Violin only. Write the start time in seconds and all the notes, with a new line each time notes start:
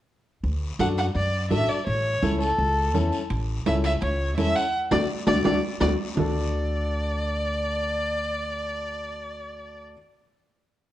0.80 F#5
0.98 F#5
1.16 D5
1.51 E5
1.69 D5
1.87 C#5
2.41 A4
3.67 E5
3.85 E5
4.02 C#5
4.38 E5
4.56 F#5
4.91 D5
5.27 D5
5.44 D5
5.81 D5
6.17 D5